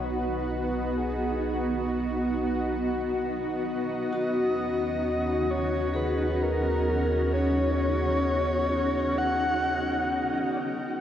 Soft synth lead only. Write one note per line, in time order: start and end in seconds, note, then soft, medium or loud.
0.05 0.99 B4 loud
0.97 1.88 G#4 medium
1.89 3.20 F#4 medium
3.69 5.52 D#5 loud
5.51 5.97 C#5 loud
5.96 6.44 B4 medium
6.43 7.32 A#4 medium
7.33 9.19 C#5 loud
9.18 10.59 F#5 loud